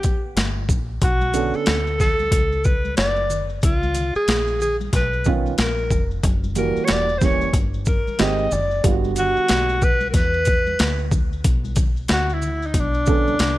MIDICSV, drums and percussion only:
0, 0, Header, 1, 2, 480
1, 0, Start_track
1, 0, Key_signature, 2, "minor"
1, 0, Tempo, 652174
1, 749, Time_signature, 4, 2, 24, 8
1, 9996, End_track
2, 0, Start_track
2, 0, Title_t, "Drums"
2, 24, Note_on_c, 9, 42, 40
2, 24, Note_on_c, 9, 82, 40
2, 32, Note_on_c, 9, 36, 73
2, 98, Note_off_c, 9, 42, 0
2, 98, Note_off_c, 9, 82, 0
2, 106, Note_off_c, 9, 36, 0
2, 270, Note_on_c, 9, 42, 65
2, 275, Note_on_c, 9, 38, 99
2, 344, Note_off_c, 9, 42, 0
2, 349, Note_off_c, 9, 38, 0
2, 506, Note_on_c, 9, 36, 98
2, 510, Note_on_c, 9, 82, 53
2, 580, Note_off_c, 9, 36, 0
2, 584, Note_off_c, 9, 82, 0
2, 745, Note_on_c, 9, 82, 55
2, 748, Note_on_c, 9, 36, 96
2, 748, Note_on_c, 9, 42, 74
2, 819, Note_off_c, 9, 82, 0
2, 822, Note_off_c, 9, 36, 0
2, 822, Note_off_c, 9, 42, 0
2, 892, Note_on_c, 9, 63, 57
2, 892, Note_on_c, 9, 82, 46
2, 965, Note_off_c, 9, 63, 0
2, 965, Note_off_c, 9, 82, 0
2, 984, Note_on_c, 9, 42, 49
2, 984, Note_on_c, 9, 82, 52
2, 987, Note_off_c, 9, 82, 0
2, 987, Note_on_c, 9, 64, 60
2, 987, Note_on_c, 9, 82, 45
2, 1058, Note_off_c, 9, 42, 0
2, 1061, Note_off_c, 9, 64, 0
2, 1061, Note_off_c, 9, 82, 0
2, 1133, Note_on_c, 9, 82, 39
2, 1207, Note_off_c, 9, 82, 0
2, 1222, Note_on_c, 9, 42, 64
2, 1228, Note_on_c, 9, 38, 106
2, 1233, Note_on_c, 9, 82, 57
2, 1295, Note_off_c, 9, 42, 0
2, 1302, Note_off_c, 9, 38, 0
2, 1306, Note_off_c, 9, 82, 0
2, 1375, Note_on_c, 9, 82, 42
2, 1448, Note_off_c, 9, 82, 0
2, 1468, Note_on_c, 9, 64, 53
2, 1468, Note_on_c, 9, 82, 40
2, 1471, Note_off_c, 9, 82, 0
2, 1471, Note_on_c, 9, 82, 46
2, 1472, Note_on_c, 9, 36, 80
2, 1476, Note_on_c, 9, 38, 31
2, 1542, Note_off_c, 9, 64, 0
2, 1545, Note_off_c, 9, 36, 0
2, 1545, Note_off_c, 9, 82, 0
2, 1550, Note_off_c, 9, 38, 0
2, 1614, Note_on_c, 9, 63, 62
2, 1614, Note_on_c, 9, 82, 44
2, 1688, Note_off_c, 9, 63, 0
2, 1688, Note_off_c, 9, 82, 0
2, 1705, Note_on_c, 9, 36, 81
2, 1707, Note_on_c, 9, 42, 82
2, 1712, Note_on_c, 9, 63, 42
2, 1712, Note_on_c, 9, 82, 65
2, 1778, Note_off_c, 9, 36, 0
2, 1780, Note_off_c, 9, 42, 0
2, 1786, Note_off_c, 9, 63, 0
2, 1786, Note_off_c, 9, 82, 0
2, 1858, Note_on_c, 9, 82, 39
2, 1931, Note_off_c, 9, 82, 0
2, 1943, Note_on_c, 9, 82, 40
2, 1947, Note_off_c, 9, 82, 0
2, 1947, Note_on_c, 9, 82, 40
2, 1953, Note_on_c, 9, 36, 82
2, 2021, Note_off_c, 9, 82, 0
2, 2027, Note_off_c, 9, 36, 0
2, 2096, Note_on_c, 9, 63, 54
2, 2096, Note_on_c, 9, 82, 36
2, 2169, Note_off_c, 9, 63, 0
2, 2169, Note_off_c, 9, 82, 0
2, 2183, Note_on_c, 9, 82, 50
2, 2186, Note_on_c, 9, 42, 67
2, 2192, Note_on_c, 9, 38, 99
2, 2257, Note_off_c, 9, 82, 0
2, 2260, Note_off_c, 9, 42, 0
2, 2265, Note_off_c, 9, 38, 0
2, 2327, Note_on_c, 9, 82, 38
2, 2401, Note_off_c, 9, 82, 0
2, 2427, Note_on_c, 9, 64, 68
2, 2427, Note_on_c, 9, 82, 49
2, 2429, Note_off_c, 9, 82, 0
2, 2429, Note_on_c, 9, 82, 51
2, 2500, Note_off_c, 9, 64, 0
2, 2503, Note_off_c, 9, 82, 0
2, 2573, Note_on_c, 9, 82, 37
2, 2646, Note_off_c, 9, 82, 0
2, 2663, Note_on_c, 9, 82, 61
2, 2672, Note_on_c, 9, 36, 104
2, 2672, Note_on_c, 9, 42, 79
2, 2737, Note_off_c, 9, 82, 0
2, 2745, Note_off_c, 9, 36, 0
2, 2746, Note_off_c, 9, 42, 0
2, 2819, Note_on_c, 9, 63, 65
2, 2819, Note_on_c, 9, 82, 45
2, 2892, Note_off_c, 9, 63, 0
2, 2892, Note_off_c, 9, 82, 0
2, 2904, Note_on_c, 9, 42, 56
2, 2904, Note_on_c, 9, 82, 50
2, 2912, Note_off_c, 9, 82, 0
2, 2912, Note_on_c, 9, 64, 55
2, 2912, Note_on_c, 9, 82, 46
2, 2977, Note_off_c, 9, 42, 0
2, 2985, Note_off_c, 9, 64, 0
2, 2985, Note_off_c, 9, 82, 0
2, 3056, Note_on_c, 9, 82, 40
2, 3129, Note_off_c, 9, 82, 0
2, 3148, Note_on_c, 9, 42, 67
2, 3148, Note_on_c, 9, 82, 59
2, 3155, Note_on_c, 9, 38, 105
2, 3221, Note_off_c, 9, 82, 0
2, 3222, Note_off_c, 9, 42, 0
2, 3229, Note_off_c, 9, 38, 0
2, 3293, Note_on_c, 9, 82, 43
2, 3366, Note_off_c, 9, 82, 0
2, 3385, Note_on_c, 9, 64, 50
2, 3385, Note_on_c, 9, 82, 40
2, 3394, Note_off_c, 9, 82, 0
2, 3394, Note_on_c, 9, 82, 44
2, 3459, Note_off_c, 9, 64, 0
2, 3468, Note_off_c, 9, 82, 0
2, 3538, Note_on_c, 9, 63, 67
2, 3538, Note_on_c, 9, 82, 46
2, 3611, Note_off_c, 9, 63, 0
2, 3611, Note_off_c, 9, 82, 0
2, 3627, Note_on_c, 9, 36, 74
2, 3628, Note_on_c, 9, 42, 81
2, 3630, Note_on_c, 9, 63, 45
2, 3630, Note_on_c, 9, 82, 60
2, 3634, Note_on_c, 9, 38, 30
2, 3701, Note_off_c, 9, 36, 0
2, 3701, Note_off_c, 9, 42, 0
2, 3703, Note_off_c, 9, 63, 0
2, 3703, Note_off_c, 9, 82, 0
2, 3708, Note_off_c, 9, 38, 0
2, 3777, Note_on_c, 9, 82, 42
2, 3851, Note_off_c, 9, 82, 0
2, 3860, Note_on_c, 9, 82, 39
2, 3874, Note_on_c, 9, 36, 88
2, 3876, Note_off_c, 9, 82, 0
2, 3876, Note_on_c, 9, 82, 40
2, 3948, Note_off_c, 9, 36, 0
2, 3950, Note_off_c, 9, 82, 0
2, 4020, Note_on_c, 9, 63, 50
2, 4020, Note_on_c, 9, 82, 37
2, 4093, Note_off_c, 9, 63, 0
2, 4093, Note_off_c, 9, 82, 0
2, 4105, Note_on_c, 9, 42, 59
2, 4111, Note_on_c, 9, 38, 105
2, 4114, Note_on_c, 9, 82, 50
2, 4179, Note_off_c, 9, 42, 0
2, 4184, Note_off_c, 9, 38, 0
2, 4188, Note_off_c, 9, 82, 0
2, 4256, Note_on_c, 9, 82, 37
2, 4329, Note_off_c, 9, 82, 0
2, 4346, Note_on_c, 9, 36, 95
2, 4347, Note_on_c, 9, 64, 62
2, 4347, Note_on_c, 9, 82, 51
2, 4420, Note_off_c, 9, 36, 0
2, 4420, Note_off_c, 9, 64, 0
2, 4421, Note_off_c, 9, 82, 0
2, 4497, Note_on_c, 9, 82, 37
2, 4571, Note_off_c, 9, 82, 0
2, 4586, Note_on_c, 9, 82, 58
2, 4589, Note_on_c, 9, 36, 101
2, 4589, Note_on_c, 9, 42, 74
2, 4659, Note_off_c, 9, 82, 0
2, 4662, Note_off_c, 9, 36, 0
2, 4663, Note_off_c, 9, 42, 0
2, 4738, Note_on_c, 9, 63, 62
2, 4738, Note_on_c, 9, 82, 47
2, 4812, Note_off_c, 9, 63, 0
2, 4812, Note_off_c, 9, 82, 0
2, 4824, Note_on_c, 9, 42, 49
2, 4824, Note_on_c, 9, 82, 54
2, 4828, Note_off_c, 9, 82, 0
2, 4828, Note_on_c, 9, 64, 62
2, 4828, Note_on_c, 9, 82, 40
2, 4897, Note_off_c, 9, 42, 0
2, 4902, Note_off_c, 9, 64, 0
2, 4902, Note_off_c, 9, 82, 0
2, 4979, Note_on_c, 9, 82, 44
2, 5052, Note_off_c, 9, 82, 0
2, 5060, Note_on_c, 9, 42, 64
2, 5067, Note_on_c, 9, 38, 95
2, 5075, Note_on_c, 9, 82, 62
2, 5134, Note_off_c, 9, 42, 0
2, 5141, Note_off_c, 9, 38, 0
2, 5149, Note_off_c, 9, 82, 0
2, 5219, Note_on_c, 9, 82, 46
2, 5292, Note_off_c, 9, 82, 0
2, 5306, Note_on_c, 9, 82, 50
2, 5310, Note_on_c, 9, 36, 89
2, 5311, Note_on_c, 9, 38, 34
2, 5313, Note_off_c, 9, 82, 0
2, 5313, Note_on_c, 9, 64, 51
2, 5313, Note_on_c, 9, 82, 38
2, 5384, Note_off_c, 9, 36, 0
2, 5384, Note_off_c, 9, 38, 0
2, 5387, Note_off_c, 9, 64, 0
2, 5387, Note_off_c, 9, 82, 0
2, 5456, Note_on_c, 9, 63, 64
2, 5456, Note_on_c, 9, 82, 48
2, 5529, Note_off_c, 9, 63, 0
2, 5529, Note_off_c, 9, 82, 0
2, 5545, Note_on_c, 9, 36, 73
2, 5546, Note_on_c, 9, 42, 80
2, 5552, Note_on_c, 9, 63, 44
2, 5552, Note_on_c, 9, 82, 60
2, 5618, Note_off_c, 9, 36, 0
2, 5620, Note_off_c, 9, 42, 0
2, 5626, Note_off_c, 9, 63, 0
2, 5626, Note_off_c, 9, 82, 0
2, 5695, Note_on_c, 9, 82, 38
2, 5769, Note_off_c, 9, 82, 0
2, 5780, Note_on_c, 9, 82, 43
2, 5792, Note_on_c, 9, 36, 87
2, 5795, Note_off_c, 9, 82, 0
2, 5795, Note_on_c, 9, 82, 39
2, 5865, Note_off_c, 9, 36, 0
2, 5868, Note_off_c, 9, 82, 0
2, 5943, Note_on_c, 9, 63, 50
2, 5943, Note_on_c, 9, 82, 38
2, 6016, Note_off_c, 9, 63, 0
2, 6016, Note_off_c, 9, 82, 0
2, 6026, Note_on_c, 9, 42, 67
2, 6031, Note_on_c, 9, 38, 99
2, 6032, Note_on_c, 9, 82, 57
2, 6100, Note_off_c, 9, 42, 0
2, 6105, Note_off_c, 9, 38, 0
2, 6105, Note_off_c, 9, 82, 0
2, 6171, Note_on_c, 9, 82, 34
2, 6245, Note_off_c, 9, 82, 0
2, 6266, Note_on_c, 9, 64, 66
2, 6266, Note_on_c, 9, 82, 51
2, 6339, Note_off_c, 9, 64, 0
2, 6340, Note_off_c, 9, 82, 0
2, 6413, Note_on_c, 9, 82, 41
2, 6487, Note_off_c, 9, 82, 0
2, 6505, Note_on_c, 9, 82, 62
2, 6506, Note_on_c, 9, 42, 78
2, 6507, Note_on_c, 9, 36, 109
2, 6579, Note_off_c, 9, 82, 0
2, 6580, Note_off_c, 9, 36, 0
2, 6580, Note_off_c, 9, 42, 0
2, 6656, Note_on_c, 9, 63, 59
2, 6656, Note_on_c, 9, 82, 43
2, 6730, Note_off_c, 9, 63, 0
2, 6730, Note_off_c, 9, 82, 0
2, 6741, Note_on_c, 9, 42, 55
2, 6741, Note_on_c, 9, 82, 53
2, 6742, Note_off_c, 9, 82, 0
2, 6742, Note_on_c, 9, 63, 43
2, 6742, Note_on_c, 9, 64, 59
2, 6742, Note_on_c, 9, 82, 42
2, 6815, Note_off_c, 9, 42, 0
2, 6815, Note_off_c, 9, 63, 0
2, 6815, Note_off_c, 9, 64, 0
2, 6815, Note_off_c, 9, 82, 0
2, 6893, Note_on_c, 9, 82, 39
2, 6967, Note_off_c, 9, 82, 0
2, 6981, Note_on_c, 9, 42, 71
2, 6988, Note_on_c, 9, 38, 100
2, 6988, Note_on_c, 9, 82, 57
2, 7055, Note_off_c, 9, 42, 0
2, 7061, Note_off_c, 9, 38, 0
2, 7061, Note_off_c, 9, 82, 0
2, 7133, Note_on_c, 9, 82, 45
2, 7206, Note_off_c, 9, 82, 0
2, 7224, Note_on_c, 9, 64, 48
2, 7224, Note_on_c, 9, 82, 41
2, 7225, Note_off_c, 9, 82, 0
2, 7225, Note_on_c, 9, 82, 52
2, 7228, Note_on_c, 9, 36, 80
2, 7297, Note_off_c, 9, 64, 0
2, 7298, Note_off_c, 9, 82, 0
2, 7302, Note_off_c, 9, 36, 0
2, 7364, Note_on_c, 9, 63, 66
2, 7364, Note_on_c, 9, 82, 45
2, 7438, Note_off_c, 9, 63, 0
2, 7438, Note_off_c, 9, 82, 0
2, 7460, Note_on_c, 9, 63, 42
2, 7460, Note_on_c, 9, 82, 69
2, 7461, Note_on_c, 9, 36, 81
2, 7461, Note_on_c, 9, 42, 78
2, 7468, Note_on_c, 9, 38, 28
2, 7533, Note_off_c, 9, 63, 0
2, 7533, Note_off_c, 9, 82, 0
2, 7535, Note_off_c, 9, 36, 0
2, 7535, Note_off_c, 9, 42, 0
2, 7541, Note_off_c, 9, 38, 0
2, 7608, Note_on_c, 9, 82, 43
2, 7681, Note_off_c, 9, 82, 0
2, 7693, Note_on_c, 9, 42, 42
2, 7693, Note_on_c, 9, 82, 40
2, 7707, Note_off_c, 9, 82, 0
2, 7707, Note_on_c, 9, 82, 38
2, 7708, Note_on_c, 9, 36, 81
2, 7767, Note_off_c, 9, 42, 0
2, 7780, Note_off_c, 9, 82, 0
2, 7781, Note_off_c, 9, 36, 0
2, 7851, Note_on_c, 9, 63, 57
2, 7851, Note_on_c, 9, 82, 37
2, 7925, Note_off_c, 9, 63, 0
2, 7925, Note_off_c, 9, 82, 0
2, 7943, Note_on_c, 9, 42, 68
2, 7946, Note_on_c, 9, 82, 53
2, 7948, Note_on_c, 9, 38, 108
2, 8016, Note_off_c, 9, 42, 0
2, 8019, Note_off_c, 9, 82, 0
2, 8022, Note_off_c, 9, 38, 0
2, 8089, Note_on_c, 9, 82, 32
2, 8163, Note_off_c, 9, 82, 0
2, 8180, Note_on_c, 9, 82, 51
2, 8181, Note_on_c, 9, 36, 91
2, 8185, Note_off_c, 9, 82, 0
2, 8185, Note_on_c, 9, 64, 65
2, 8185, Note_on_c, 9, 82, 46
2, 8254, Note_off_c, 9, 36, 0
2, 8258, Note_off_c, 9, 64, 0
2, 8258, Note_off_c, 9, 82, 0
2, 8336, Note_on_c, 9, 82, 37
2, 8410, Note_off_c, 9, 82, 0
2, 8421, Note_on_c, 9, 82, 60
2, 8423, Note_on_c, 9, 42, 77
2, 8424, Note_on_c, 9, 36, 108
2, 8495, Note_off_c, 9, 82, 0
2, 8496, Note_off_c, 9, 42, 0
2, 8497, Note_off_c, 9, 36, 0
2, 8572, Note_on_c, 9, 63, 62
2, 8572, Note_on_c, 9, 82, 45
2, 8645, Note_off_c, 9, 63, 0
2, 8645, Note_off_c, 9, 82, 0
2, 8654, Note_on_c, 9, 42, 58
2, 8654, Note_on_c, 9, 82, 52
2, 8659, Note_off_c, 9, 82, 0
2, 8659, Note_on_c, 9, 64, 62
2, 8659, Note_on_c, 9, 82, 43
2, 8660, Note_on_c, 9, 36, 94
2, 8727, Note_off_c, 9, 42, 0
2, 8733, Note_off_c, 9, 64, 0
2, 8733, Note_off_c, 9, 82, 0
2, 8734, Note_off_c, 9, 36, 0
2, 8806, Note_on_c, 9, 82, 39
2, 8880, Note_off_c, 9, 82, 0
2, 8894, Note_on_c, 9, 42, 61
2, 8900, Note_on_c, 9, 38, 104
2, 8901, Note_on_c, 9, 82, 56
2, 8967, Note_off_c, 9, 42, 0
2, 8974, Note_off_c, 9, 38, 0
2, 8975, Note_off_c, 9, 82, 0
2, 9048, Note_on_c, 9, 82, 45
2, 9122, Note_off_c, 9, 82, 0
2, 9139, Note_on_c, 9, 64, 54
2, 9139, Note_on_c, 9, 82, 40
2, 9140, Note_off_c, 9, 82, 0
2, 9140, Note_on_c, 9, 82, 45
2, 9213, Note_off_c, 9, 64, 0
2, 9214, Note_off_c, 9, 82, 0
2, 9290, Note_on_c, 9, 82, 46
2, 9364, Note_off_c, 9, 82, 0
2, 9377, Note_on_c, 9, 36, 78
2, 9377, Note_on_c, 9, 42, 80
2, 9381, Note_on_c, 9, 63, 47
2, 9381, Note_on_c, 9, 82, 61
2, 9450, Note_off_c, 9, 36, 0
2, 9450, Note_off_c, 9, 42, 0
2, 9455, Note_off_c, 9, 63, 0
2, 9455, Note_off_c, 9, 82, 0
2, 9525, Note_on_c, 9, 82, 42
2, 9598, Note_off_c, 9, 82, 0
2, 9612, Note_on_c, 9, 82, 42
2, 9625, Note_on_c, 9, 36, 85
2, 9627, Note_off_c, 9, 82, 0
2, 9627, Note_on_c, 9, 82, 44
2, 9698, Note_off_c, 9, 36, 0
2, 9701, Note_off_c, 9, 82, 0
2, 9771, Note_on_c, 9, 63, 59
2, 9771, Note_on_c, 9, 82, 41
2, 9844, Note_off_c, 9, 63, 0
2, 9844, Note_off_c, 9, 82, 0
2, 9857, Note_on_c, 9, 42, 67
2, 9862, Note_on_c, 9, 38, 106
2, 9866, Note_on_c, 9, 82, 54
2, 9930, Note_off_c, 9, 42, 0
2, 9936, Note_off_c, 9, 38, 0
2, 9939, Note_off_c, 9, 82, 0
2, 9996, End_track
0, 0, End_of_file